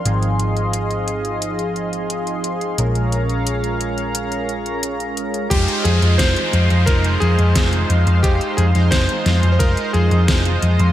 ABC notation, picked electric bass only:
X:1
M:4/4
L:1/16
Q:1/4=88
K:Fm
V:1 name="Picked electric bass" clef=bass
A,,,16 | B,,,16 | F,,, z F,, F,, F,,, z F,, F,, F,,,2 F,, F,, F,,,2 F,, F,, | F,,, z F,, F,, F,,, z F,, F,, F,,, z F,, F,, F,,,2 F,, F,, |]